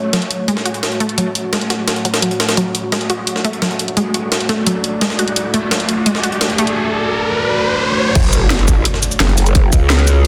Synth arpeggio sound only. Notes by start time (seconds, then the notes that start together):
0.13 F#3
0.48 G#3
0.65 F#4
1.00 A3
1.18 F#3
1.53 G#3
1.70 F#4
2.05 F#3
2.22 F#3
2.57 F#3
2.92 G#3
3.10 F#4
3.45 A3
3.62 F#3
3.97 G#3
4.14 F#4
4.49 A3
4.67 F#3
5.01 G#3
5.19 F#4
5.54 A3
5.71 F#3
6.06 G#3
6.24 F#4
6.58 A3